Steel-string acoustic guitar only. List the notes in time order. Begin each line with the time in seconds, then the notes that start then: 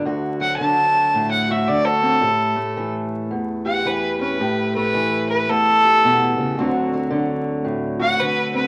Already playing: D3
0.05 D2 F#4
0.40 F#3
0.60 D3
1.14 A2
1.50 F#4
1.69 D3
2.03 C4
2.22 A2 G4
2.56 A3
2.77 E3
3.31 E2
3.66 G4
3.85 E3
4.21 C#4
4.40 A2 G4
4.76 A3
4.94 E3
5.49 E2
5.84 G4
6.04 B2
6.38 C#3
6.57 D2 D3 F#3 C4 F#4
6.93 F#3
7.10 D3
7.65 A2
8.00 F#4
8.20 D3
8.54 C4